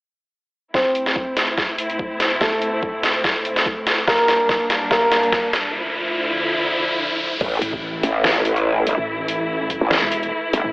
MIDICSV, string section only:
0, 0, Header, 1, 2, 480
1, 0, Start_track
1, 0, Tempo, 416667
1, 855, Time_signature, 4, 2, 24, 8
1, 12355, End_track
2, 0, Start_track
2, 0, Title_t, "String section"
2, 0, Program_c, 0, 48
2, 854, Note_on_c, 0, 45, 74
2, 854, Note_on_c, 0, 57, 69
2, 854, Note_on_c, 0, 60, 68
2, 854, Note_on_c, 0, 64, 82
2, 4656, Note_off_c, 0, 45, 0
2, 4656, Note_off_c, 0, 57, 0
2, 4656, Note_off_c, 0, 60, 0
2, 4656, Note_off_c, 0, 64, 0
2, 4694, Note_on_c, 0, 43, 76
2, 4694, Note_on_c, 0, 55, 72
2, 4694, Note_on_c, 0, 58, 71
2, 4694, Note_on_c, 0, 62, 87
2, 6595, Note_off_c, 0, 43, 0
2, 6595, Note_off_c, 0, 55, 0
2, 6595, Note_off_c, 0, 58, 0
2, 6595, Note_off_c, 0, 62, 0
2, 6615, Note_on_c, 0, 38, 82
2, 6615, Note_on_c, 0, 50, 72
2, 6615, Note_on_c, 0, 53, 75
2, 6615, Note_on_c, 0, 64, 85
2, 8516, Note_off_c, 0, 38, 0
2, 8516, Note_off_c, 0, 50, 0
2, 8516, Note_off_c, 0, 53, 0
2, 8516, Note_off_c, 0, 64, 0
2, 8533, Note_on_c, 0, 64, 86
2, 8534, Note_on_c, 0, 52, 81
2, 8534, Note_on_c, 0, 57, 71
2, 12355, Note_off_c, 0, 52, 0
2, 12355, Note_off_c, 0, 57, 0
2, 12355, Note_off_c, 0, 64, 0
2, 12355, End_track
0, 0, End_of_file